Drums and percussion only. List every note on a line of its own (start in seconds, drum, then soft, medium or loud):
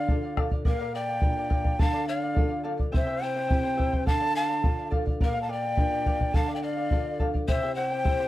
0.09 bombo low medium
0.37 bombo rim medium
0.37 bombo low medium
0.51 bombo low medium
0.65 bombo low medium
1.22 bombo low medium
1.51 bombo low medium
1.65 bombo low medium
1.79 bombo low medium
2.37 bombo low medium
2.80 bombo low medium
2.94 bombo low medium
3.50 bombo low medium
3.80 bombo low medium
3.93 bombo low soft
4.07 bombo low medium
4.64 bombo low medium
4.92 bombo low medium
5.07 bombo low medium
5.21 bombo low medium
5.77 bombo low medium
6.06 bombo low medium
6.21 bombo low soft
6.34 bombo low medium
6.91 bombo low medium
7.20 bombo low medium
7.35 bombo low soft
7.48 bombo low medium
8.05 bombo low medium